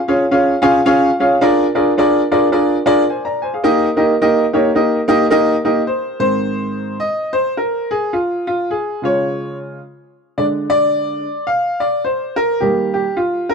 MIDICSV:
0, 0, Header, 1, 2, 480
1, 0, Start_track
1, 0, Key_signature, -4, "major"
1, 0, Tempo, 559701
1, 1218, Time_signature, 4, 2, 24, 8
1, 11615, End_track
2, 0, Start_track
2, 0, Title_t, "Upright piano"
2, 0, Program_c, 0, 0
2, 68, Note_on_c, 0, 68, 80
2, 71, Note_on_c, 0, 73, 81
2, 71, Note_on_c, 0, 77, 90
2, 72, Note_on_c, 0, 65, 76
2, 73, Note_on_c, 0, 61, 82
2, 199, Note_off_c, 0, 68, 0
2, 201, Note_off_c, 0, 61, 0
2, 201, Note_off_c, 0, 65, 0
2, 201, Note_off_c, 0, 73, 0
2, 201, Note_off_c, 0, 77, 0
2, 268, Note_on_c, 0, 61, 89
2, 270, Note_on_c, 0, 77, 94
2, 272, Note_on_c, 0, 65, 81
2, 274, Note_on_c, 0, 68, 74
2, 275, Note_on_c, 0, 73, 77
2, 456, Note_off_c, 0, 61, 0
2, 457, Note_off_c, 0, 65, 0
2, 457, Note_off_c, 0, 77, 0
2, 459, Note_off_c, 0, 68, 0
2, 459, Note_off_c, 0, 73, 0
2, 530, Note_on_c, 0, 65, 102
2, 530, Note_on_c, 0, 80, 71
2, 534, Note_on_c, 0, 68, 99
2, 536, Note_on_c, 0, 73, 95
2, 537, Note_on_c, 0, 61, 107
2, 537, Note_on_c, 0, 77, 120
2, 669, Note_off_c, 0, 65, 0
2, 672, Note_off_c, 0, 68, 0
2, 672, Note_off_c, 0, 73, 0
2, 673, Note_off_c, 0, 61, 0
2, 673, Note_off_c, 0, 77, 0
2, 718, Note_off_c, 0, 80, 0
2, 735, Note_on_c, 0, 61, 112
2, 737, Note_on_c, 0, 77, 118
2, 738, Note_on_c, 0, 65, 101
2, 738, Note_on_c, 0, 73, 108
2, 739, Note_on_c, 0, 68, 97
2, 929, Note_off_c, 0, 61, 0
2, 930, Note_off_c, 0, 65, 0
2, 930, Note_off_c, 0, 68, 0
2, 930, Note_off_c, 0, 73, 0
2, 931, Note_off_c, 0, 77, 0
2, 1027, Note_on_c, 0, 68, 76
2, 1028, Note_on_c, 0, 61, 88
2, 1031, Note_on_c, 0, 65, 81
2, 1032, Note_on_c, 0, 73, 79
2, 1033, Note_on_c, 0, 77, 98
2, 1157, Note_off_c, 0, 68, 0
2, 1158, Note_off_c, 0, 61, 0
2, 1159, Note_off_c, 0, 65, 0
2, 1160, Note_off_c, 0, 73, 0
2, 1160, Note_off_c, 0, 77, 0
2, 1211, Note_on_c, 0, 62, 105
2, 1213, Note_on_c, 0, 65, 102
2, 1215, Note_on_c, 0, 68, 87
2, 1218, Note_on_c, 0, 70, 100
2, 1219, Note_on_c, 0, 74, 107
2, 1406, Note_off_c, 0, 62, 0
2, 1407, Note_off_c, 0, 65, 0
2, 1408, Note_off_c, 0, 68, 0
2, 1410, Note_off_c, 0, 70, 0
2, 1410, Note_off_c, 0, 74, 0
2, 1500, Note_on_c, 0, 62, 83
2, 1502, Note_on_c, 0, 65, 85
2, 1502, Note_on_c, 0, 68, 79
2, 1503, Note_on_c, 0, 70, 83
2, 1504, Note_on_c, 0, 74, 91
2, 1633, Note_off_c, 0, 62, 0
2, 1635, Note_off_c, 0, 65, 0
2, 1635, Note_off_c, 0, 68, 0
2, 1635, Note_off_c, 0, 70, 0
2, 1635, Note_off_c, 0, 74, 0
2, 1694, Note_on_c, 0, 65, 81
2, 1698, Note_on_c, 0, 62, 95
2, 1698, Note_on_c, 0, 68, 88
2, 1702, Note_on_c, 0, 70, 89
2, 1704, Note_on_c, 0, 74, 106
2, 1887, Note_off_c, 0, 65, 0
2, 1889, Note_off_c, 0, 62, 0
2, 1889, Note_off_c, 0, 68, 0
2, 1891, Note_off_c, 0, 70, 0
2, 1892, Note_off_c, 0, 74, 0
2, 1985, Note_on_c, 0, 65, 85
2, 1986, Note_on_c, 0, 74, 101
2, 1987, Note_on_c, 0, 62, 84
2, 1987, Note_on_c, 0, 68, 81
2, 1988, Note_on_c, 0, 70, 86
2, 2116, Note_off_c, 0, 62, 0
2, 2116, Note_off_c, 0, 65, 0
2, 2116, Note_off_c, 0, 68, 0
2, 2116, Note_off_c, 0, 74, 0
2, 2117, Note_off_c, 0, 70, 0
2, 2161, Note_on_c, 0, 62, 84
2, 2161, Note_on_c, 0, 65, 79
2, 2164, Note_on_c, 0, 70, 78
2, 2165, Note_on_c, 0, 68, 74
2, 2166, Note_on_c, 0, 74, 100
2, 2360, Note_off_c, 0, 65, 0
2, 2361, Note_off_c, 0, 62, 0
2, 2362, Note_off_c, 0, 68, 0
2, 2362, Note_off_c, 0, 70, 0
2, 2363, Note_off_c, 0, 74, 0
2, 2451, Note_on_c, 0, 62, 103
2, 2451, Note_on_c, 0, 68, 94
2, 2452, Note_on_c, 0, 70, 93
2, 2454, Note_on_c, 0, 65, 97
2, 2459, Note_on_c, 0, 74, 122
2, 2588, Note_off_c, 0, 62, 0
2, 2588, Note_off_c, 0, 68, 0
2, 2588, Note_off_c, 0, 70, 0
2, 2589, Note_off_c, 0, 65, 0
2, 2592, Note_off_c, 0, 74, 0
2, 2656, Note_on_c, 0, 80, 64
2, 2660, Note_on_c, 0, 72, 57
2, 2786, Note_on_c, 0, 82, 70
2, 2790, Note_off_c, 0, 80, 0
2, 2792, Note_off_c, 0, 72, 0
2, 2794, Note_on_c, 0, 74, 58
2, 2925, Note_off_c, 0, 82, 0
2, 2929, Note_off_c, 0, 74, 0
2, 2933, Note_on_c, 0, 80, 72
2, 2943, Note_on_c, 0, 72, 61
2, 3028, Note_off_c, 0, 80, 0
2, 3034, Note_off_c, 0, 72, 0
2, 3034, Note_on_c, 0, 77, 65
2, 3036, Note_on_c, 0, 68, 56
2, 3117, Note_on_c, 0, 58, 96
2, 3120, Note_on_c, 0, 63, 97
2, 3120, Note_on_c, 0, 67, 94
2, 3120, Note_on_c, 0, 70, 93
2, 3122, Note_on_c, 0, 75, 114
2, 3262, Note_off_c, 0, 77, 0
2, 3263, Note_off_c, 0, 68, 0
2, 3318, Note_off_c, 0, 58, 0
2, 3319, Note_off_c, 0, 63, 0
2, 3319, Note_off_c, 0, 67, 0
2, 3319, Note_off_c, 0, 70, 0
2, 3320, Note_off_c, 0, 75, 0
2, 3400, Note_on_c, 0, 58, 82
2, 3402, Note_on_c, 0, 63, 76
2, 3403, Note_on_c, 0, 67, 82
2, 3405, Note_on_c, 0, 70, 77
2, 3405, Note_on_c, 0, 75, 94
2, 3542, Note_off_c, 0, 58, 0
2, 3543, Note_off_c, 0, 63, 0
2, 3543, Note_off_c, 0, 67, 0
2, 3544, Note_off_c, 0, 70, 0
2, 3544, Note_off_c, 0, 75, 0
2, 3616, Note_on_c, 0, 63, 82
2, 3616, Note_on_c, 0, 75, 104
2, 3617, Note_on_c, 0, 58, 90
2, 3618, Note_on_c, 0, 70, 84
2, 3621, Note_on_c, 0, 67, 83
2, 3806, Note_off_c, 0, 63, 0
2, 3807, Note_off_c, 0, 58, 0
2, 3807, Note_off_c, 0, 70, 0
2, 3807, Note_off_c, 0, 75, 0
2, 3809, Note_off_c, 0, 67, 0
2, 3888, Note_on_c, 0, 58, 87
2, 3888, Note_on_c, 0, 67, 80
2, 3889, Note_on_c, 0, 63, 78
2, 3892, Note_on_c, 0, 70, 76
2, 3895, Note_on_c, 0, 73, 89
2, 4025, Note_off_c, 0, 58, 0
2, 4025, Note_off_c, 0, 67, 0
2, 4026, Note_off_c, 0, 63, 0
2, 4027, Note_off_c, 0, 70, 0
2, 4029, Note_off_c, 0, 73, 0
2, 4073, Note_on_c, 0, 58, 84
2, 4075, Note_on_c, 0, 63, 73
2, 4077, Note_on_c, 0, 67, 77
2, 4078, Note_on_c, 0, 70, 82
2, 4081, Note_on_c, 0, 75, 93
2, 4275, Note_off_c, 0, 58, 0
2, 4276, Note_off_c, 0, 63, 0
2, 4277, Note_off_c, 0, 67, 0
2, 4277, Note_off_c, 0, 70, 0
2, 4279, Note_off_c, 0, 75, 0
2, 4355, Note_on_c, 0, 58, 105
2, 4360, Note_on_c, 0, 63, 96
2, 4360, Note_on_c, 0, 67, 100
2, 4360, Note_on_c, 0, 75, 117
2, 4363, Note_on_c, 0, 70, 91
2, 4499, Note_off_c, 0, 58, 0
2, 4501, Note_off_c, 0, 63, 0
2, 4501, Note_off_c, 0, 67, 0
2, 4501, Note_off_c, 0, 75, 0
2, 4503, Note_off_c, 0, 70, 0
2, 4549, Note_on_c, 0, 58, 110
2, 4553, Note_on_c, 0, 63, 99
2, 4555, Note_on_c, 0, 70, 104
2, 4557, Note_on_c, 0, 75, 126
2, 4558, Note_on_c, 0, 67, 100
2, 4753, Note_off_c, 0, 58, 0
2, 4755, Note_off_c, 0, 63, 0
2, 4756, Note_off_c, 0, 70, 0
2, 4757, Note_off_c, 0, 67, 0
2, 4757, Note_off_c, 0, 75, 0
2, 4843, Note_on_c, 0, 58, 90
2, 4843, Note_on_c, 0, 63, 76
2, 4844, Note_on_c, 0, 70, 78
2, 4845, Note_on_c, 0, 75, 93
2, 4847, Note_on_c, 0, 67, 82
2, 4982, Note_off_c, 0, 63, 0
2, 4983, Note_off_c, 0, 58, 0
2, 4983, Note_off_c, 0, 70, 0
2, 4984, Note_off_c, 0, 75, 0
2, 4985, Note_off_c, 0, 67, 0
2, 5036, Note_on_c, 0, 72, 88
2, 5304, Note_off_c, 0, 72, 0
2, 5313, Note_on_c, 0, 44, 52
2, 5314, Note_on_c, 0, 51, 46
2, 5317, Note_on_c, 0, 72, 118
2, 5322, Note_on_c, 0, 60, 59
2, 5966, Note_off_c, 0, 44, 0
2, 5967, Note_off_c, 0, 51, 0
2, 5969, Note_off_c, 0, 72, 0
2, 5971, Note_off_c, 0, 60, 0
2, 6002, Note_on_c, 0, 75, 93
2, 6270, Note_off_c, 0, 75, 0
2, 6285, Note_on_c, 0, 72, 101
2, 6473, Note_off_c, 0, 72, 0
2, 6495, Note_on_c, 0, 70, 92
2, 6781, Note_on_c, 0, 68, 93
2, 6786, Note_off_c, 0, 70, 0
2, 6973, Note_on_c, 0, 65, 83
2, 6981, Note_off_c, 0, 68, 0
2, 7253, Note_off_c, 0, 65, 0
2, 7266, Note_on_c, 0, 65, 86
2, 7464, Note_off_c, 0, 65, 0
2, 7466, Note_on_c, 0, 68, 85
2, 7734, Note_on_c, 0, 49, 57
2, 7741, Note_on_c, 0, 56, 50
2, 7748, Note_on_c, 0, 65, 64
2, 7751, Note_off_c, 0, 68, 0
2, 7761, Note_on_c, 0, 73, 90
2, 8196, Note_off_c, 0, 73, 0
2, 8379, Note_off_c, 0, 49, 0
2, 8382, Note_off_c, 0, 56, 0
2, 8386, Note_off_c, 0, 65, 0
2, 8899, Note_on_c, 0, 50, 53
2, 8899, Note_on_c, 0, 74, 88
2, 8901, Note_on_c, 0, 56, 48
2, 8906, Note_on_c, 0, 62, 57
2, 8962, Note_off_c, 0, 74, 0
2, 9174, Note_on_c, 0, 74, 114
2, 9626, Note_off_c, 0, 50, 0
2, 9627, Note_off_c, 0, 56, 0
2, 9630, Note_off_c, 0, 62, 0
2, 9819, Note_off_c, 0, 74, 0
2, 9835, Note_on_c, 0, 77, 96
2, 10121, Note_on_c, 0, 74, 90
2, 10137, Note_off_c, 0, 77, 0
2, 10330, Note_on_c, 0, 72, 86
2, 10333, Note_off_c, 0, 74, 0
2, 10596, Note_off_c, 0, 72, 0
2, 10602, Note_on_c, 0, 70, 98
2, 10810, Note_on_c, 0, 67, 81
2, 10813, Note_off_c, 0, 70, 0
2, 10820, Note_on_c, 0, 51, 49
2, 10828, Note_on_c, 0, 55, 47
2, 10830, Note_on_c, 0, 58, 59
2, 11083, Note_off_c, 0, 67, 0
2, 11096, Note_on_c, 0, 67, 88
2, 11162, Note_off_c, 0, 51, 0
2, 11166, Note_off_c, 0, 55, 0
2, 11167, Note_off_c, 0, 58, 0
2, 11291, Note_on_c, 0, 65, 88
2, 11300, Note_off_c, 0, 67, 0
2, 11573, Note_on_c, 0, 70, 98
2, 11585, Note_off_c, 0, 65, 0
2, 11615, Note_off_c, 0, 70, 0
2, 11615, End_track
0, 0, End_of_file